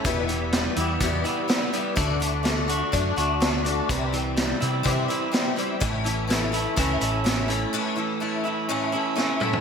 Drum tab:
HH |x-x-x-x-x-x-x-x-|x-x-x-x-x-x-x-x-|x-x-x-x-x-x-x-x-|x-x-x-x-x-x-x-x-|
SD |----o-------o---|----o-------o---|----o-------o---|----o-------o---|
T2 |----------------|----------------|----------------|----------------|
FT |----------------|----------------|----------------|----------------|
BD |o-------o-------|o-------o-------|o-------o-------|o-------o-------|

HH |----------------|
SD |------------o---|
T2 |--------------o-|
FT |---------------o|
BD |----------------|